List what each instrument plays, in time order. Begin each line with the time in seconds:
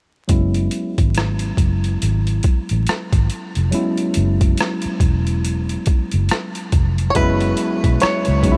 0.28 fingered electric bass F#1, tine electric piano F#3 G#3 B3 C#4 E4, kick, closed hi-hat
0.54 closed hi-hat
0.71 closed hi-hat
0.98 fingered electric bass G#1, kick, closed hi-hat
1.15 cross-stick, closed hi-hat
1.39 closed hi-hat
1.57 fingered electric bass F#1, kick, closed hi-hat
1.84 closed hi-hat
2.02 fingered electric bass G#1, closed hi-hat
2.27 closed hi-hat
2.43 kick, closed hi-hat
2.69 fingered electric bass A1, closed hi-hat
2.87 cross-stick, closed hi-hat
3.12 fingered electric bass G#1, kick, closed hi-hat
3.30 closed hi-hat
3.55 fingered electric bass F1, closed hi-hat
3.71 tine electric piano F#3 G#3 B3 C#4 E4, closed hi-hat
3.97 closed hi-hat
4.14 fingered electric bass F#1, closed hi-hat
4.41 kick, closed hi-hat
4.57 cross-stick, closed hi-hat
4.82 muted fingered electric bass stroke, closed hi-hat
5.00 fingered electric bass E1, kick, closed hi-hat
5.27 closed hi-hat
5.45 closed hi-hat
5.69 closed hi-hat
5.86 muted fingered electric bass stroke, kick, closed hi-hat
6.11 fingered electric bass F#1, closed hi-hat
6.29 cross-stick, closed hi-hat
6.55 closed hi-hat
6.72 fingered electric bass F1, kick, closed hi-hat
6.98 closed hi-hat
7.10 five-string banjo C#5
7.15 fingered electric bass F#1, tine electric piano F#3 G#3 A3 C#4 E4, five-string banjo B4, kick, closed hi-hat
7.22 tine electric piano B3
7.41 closed hi-hat
7.57 closed hi-hat
7.84 fingered electric bass B1, kick, closed hi-hat
8.00 five-string banjo C#5, muted fingered electric bass stroke, cross-stick, closed hi-hat
8.25 fingered electric bass C#2, closed hi-hat
8.43 tine electric piano F#3 G#3 B3 C#4 D#4, kick, closed hi-hat
8.52 tine electric piano E4